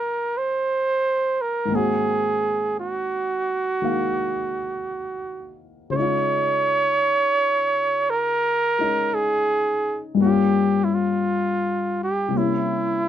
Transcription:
Already playing: grand piano G#2 D#3 A#3 C4 G5, trumpet A#4
0.38 trumpet C5
1.41 trumpet A#4
1.65 grand piano G#2 D#3
1.71 grand piano A#3 C4, trumpet G#4
1.76 grand piano F#4
2.80 trumpet F#4
3.82 grand piano D#3 G#3 A#3 F5
5.90 grand piano C#3 G#3, trumpet C5
5.96 grand piano D#4, trumpet C#5
6.02 grand piano F4
8.10 trumpet A#4
8.79 grand piano G#3 C#4 D#4
9.14 trumpet G#4
10.15 grand piano G2 G3
10.20 grand piano A#3 C#4, trumpet G4
10.26 grand piano F4
10.84 trumpet E4
10.94 trumpet F4
12.04 trumpet G4
12.28 grand piano C3 G3
12.34 grand piano A#3 C#4, trumpet E4
12.39 grand piano E4

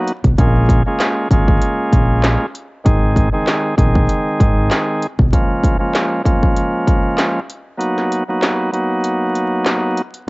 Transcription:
Already playing: tonewheel organ F#3 A#3 B3 D#4 F#4
0.08 closed hi-hat
0.24 fingered electric bass B1, kick, closed hi-hat
0.38 fingered electric bass A#1, tonewheel organ G#3 A#3 C#4 F4 G#4, kick, closed hi-hat
0.69 kick, closed hi-hat
0.86 tonewheel organ G#3 A#3 C#4 F4 G#4
1.00 snare, clap, closed hi-hat
1.31 fingered electric bass G#1, tonewheel organ G#3 A#3 C#4 F4 G#4, kick, closed hi-hat
1.48 kick
1.62 closed hi-hat
1.93 fingered electric bass A#1, kick, closed hi-hat
2.24 snare, clap, closed hi-hat
2.55 closed hi-hat
2.84 fingered electric bass G#1, tonewheel organ D#3 G#3 C4 D#4 G#4, kick, closed hi-hat
3.16 kick, closed hi-hat
3.33 tonewheel organ D#3 G#3 C4 D#4 G#4
3.47 snare, clap, closed hi-hat
3.77 fingered electric bass A#1, tonewheel organ D#3 G#3 C4 D#4 G#4, kick, closed hi-hat
3.95 kick
4.09 closed hi-hat
4.40 fingered electric bass G#1, kick, closed hi-hat
4.71 snare, clap, closed hi-hat
5.02 closed hi-hat
5.19 fingered electric bass B1, kick
5.33 tonewheel organ F3 G#3 A#3 C#4 F4, kick, closed hi-hat
5.64 kick, closed hi-hat
5.79 tonewheel organ F3 G#3 A#3 C#4 F4
5.95 snare, clap, closed hi-hat
6.24 tonewheel organ F3 G#3 A#3 C#4 F4, kick, closed hi-hat
6.43 kick
6.57 closed hi-hat
6.88 kick, closed hi-hat
7.18 snare, clap, closed hi-hat
7.50 closed hi-hat
7.77 tonewheel organ F#3 A#3 B3 D#4 F#4, closed hi-hat
7.98 snare
8.12 closed hi-hat
8.28 tonewheel organ F#3 A#3 B3 D#4 F#4
8.42 snare, clap, closed hi-hat
8.72 tonewheel organ F#3 A#3 B3 D#4 F#4, closed hi-hat
9.04 closed hi-hat
9.35 closed hi-hat
9.66 snare, clap, closed hi-hat
9.97 closed hi-hat
10.14 closed hi-hat

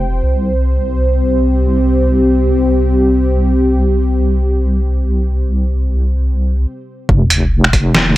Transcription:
Already playing: wobble bass F1, analog synth pad F4 C5 G5
0.23 wobble bass C2, analog synth pad C4 G4
7.09 wobble bass F1, kick, sub drop
7.30 closed hi-hat
7.64 finger snap
7.73 wobble bass F1, kick, closed hi-hat
7.95 snare

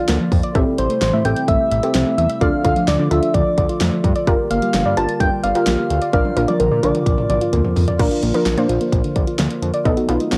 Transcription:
Already playing: pipe organ D3 F3 A#3 F4 D5, synth pluck D4 A4, soft synth lead F5
0.08 analog synth bass D2, synth pluck A#3, snare, closed hi-hat
0.20 synth pluck F3
0.32 analog synth bass F2, kick, open hi-hat
0.43 synth pluck D5, closed hi-hat
0.55 analog synth bass A1, pipe organ C3 G3 A3 E4 G4, synth pluck C4 G4 A4 E5, kick, closed hi-hat
0.78 analog synth bass A1, synth pluck C4, soft synth lead C5, closed hi-hat
0.90 synth pluck A3, closed hi-hat
1.02 analog synth bass A1, synth pluck E3, soft synth lead C5, snare, closed hi-hat
1.13 analog synth bass A2, synth pluck E5
1.25 analog synth bass A1, synth pluck C4 G4 A4, soft synth lead G5, closed hi-hat
1.37 closed hi-hat
1.48 analog synth bass A1, synth pluck A3, soft synth lead E5, kick, closed hi-hat
1.71 analog synth bass A1, synth pluck E5, closed hi-hat
1.83 synth pluck C4 G4 A4, closed hi-hat
1.95 analog synth bass C2, synth pluck C4, snare, closed hi-hat
2.06 synth pluck A3
2.18 analog synth bass E2, soft synth lead E5, closed hi-hat
2.30 synth pluck E5, closed hi-hat
2.41 analog synth bass D2, pipe organ D3 F3 F4 A4, synth pluck D4 F4 A4 D5, soft synth lead F5, kick, closed hi-hat
2.65 analog synth bass D2, synth pluck A3 D4 F4 A4, soft synth lead F5, kick, closed hi-hat
2.76 synth pluck F3, closed hi-hat
2.88 analog synth bass D2, synth pluck D3, soft synth lead D5, snare, closed hi-hat
2.99 analog synth bass D3, synth pluck D5
3.11 analog synth bass D2, synth pluck D4 F4 A4, soft synth lead E5, closed hi-hat
3.23 closed hi-hat
3.34 analog synth bass D2, synth pluck F3, soft synth lead D5, kick, closed hi-hat
3.58 analog synth bass D2, synth pluck D5, kick, closed hi-hat
3.69 synth pluck F4, closed hi-hat
3.81 analog synth bass F2, synth pluck A3, snare, closed hi-hat
3.92 synth pluck F3
4.04 analog synth bass G2, kick, closed hi-hat
4.16 synth pluck D5, closed hi-hat
4.27 analog synth bass G1, pipe organ G3 A#3 G4, synth pluck F4 G4 A#4 D5, kick, closed hi-hat
4.51 analog synth bass G1, synth pluck A#3, soft synth lead F5, closed hi-hat
4.62 synth pluck G3, closed hi-hat
4.74 analog synth bass G1, synth pluck D3, snare, closed hi-hat
4.85 analog synth bass G2, synth pluck D5
4.97 analog synth bass G1, synth pluck F4 G4 A#4, soft synth lead A5, closed hi-hat
5.09 closed hi-hat
5.20 analog synth bass G1, synth pluck G3, soft synth lead G5, kick, closed hi-hat
5.43 analog synth bass G1, synth pluck D5, soft synth lead F5, closed hi-hat
5.55 synth pluck F4 G4 A#4, closed hi-hat
5.67 analog synth bass A#1, synth pluck A#3, snare, closed hi-hat
5.78 synth pluck G3
5.90 analog synth bass D2, closed hi-hat
6.02 synth pluck D5, closed hi-hat
6.13 analog synth bass A#1, pipe organ F3 F4 A#4, synth pluck D4 F4 A#4 D5, soft synth lead F5, kick, closed hi-hat, high tom
6.25 high tom
6.37 analog synth bass A#1, synth pluck A#3 D4 F4 A#4, closed hi-hat
6.48 synth pluck F3, soft synth lead D5, closed hi-hat, high tom
6.60 analog synth bass A#1, synth pluck D3, soft synth lead A#4, closed hi-hat, mid tom
6.71 analog synth bass A#2, synth pluck D5
6.83 analog synth bass A#1, synth pluck D4 F4 A#4, soft synth lead D5, closed hi-hat, mid tom
6.95 closed hi-hat, mid tom
7.06 analog synth bass A#1, synth pluck F3, kick, closed hi-hat
7.18 mid tom
7.30 analog synth bass A#1, synth pluck D5, closed hi-hat, mid tom
7.41 synth pluck F4, closed hi-hat
7.53 analog synth bass D2, synth pluck A#3, closed hi-hat, floor tom
7.65 synth pluck F3, floor tom
7.76 analog synth bass F2, floor tom, open hi-hat
7.88 synth pluck D5, closed hi-hat, floor tom
7.99 analog synth bass A#1, pipe organ D3 F3 A#3 F4 A#4, synth pluck D4 F4 A#4 D5, kick, closed hi-hat, crash
8.11 synth pluck F4, closed hi-hat
8.23 analog synth bass A#1, synth pluck A#3, closed hi-hat
8.34 synth pluck F3 D4 F4 A#4, closed hi-hat
8.46 analog synth bass A#1, snare, closed hi-hat
8.57 analog synth bass A#2, synth pluck D4 F4 C5 D5, closed hi-hat
8.69 analog synth bass A#1, synth pluck F4, closed hi-hat
8.81 synth pluck A#3, closed hi-hat
8.92 analog synth bass A#1, kick, closed hi-hat
9.04 synth pluck D3, closed hi-hat
9.16 analog synth bass A#1, synth pluck D5, kick, closed hi-hat
9.27 synth pluck F4, closed hi-hat
9.39 analog synth bass D2, synth pluck A#3, snare, closed hi-hat
9.51 closed hi-hat
9.62 analog synth bass F2, synth pluck D3, closed hi-hat
9.74 synth pluck D5, closed hi-hat
9.85 analog synth bass B1, pipe organ D#3 F#3 A3 B3 D#4, synth pluck B3 D#4 A4 D#5, kick, closed hi-hat
9.97 synth pluck F#4, closed hi-hat
10.09 analog synth bass B1, synth pluck B3 D#4 F4, closed hi-hat
10.20 synth pluck A3, closed hi-hat
10.32 analog synth bass B1, snare, closed hi-hat

